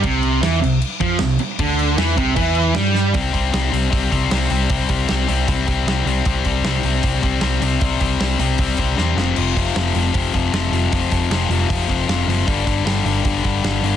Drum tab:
CC |xxxxxxxx|xxxxxxx-|--------|--------|
HH |--------|--------|oooooooo|oooooooo|
SD |--o---o-|--o---oo|--o---o-|--o---o-|
BD |o----o--|o--oo---|oo--oo--|oo--oo--|

CC |--------|--------|x-------|--------|
HH |oooooooo|oooooo--|-ooooooo|oooooooo|
SD |--o---o-|--o---oo|--o---o-|--o---o-|
BD |oo--oo--|oo--oo--|-o--oo--|oo--oo--|

CC |--------|
HH |oooooooo|
SD |--o---o-|
BD |oo--oo--|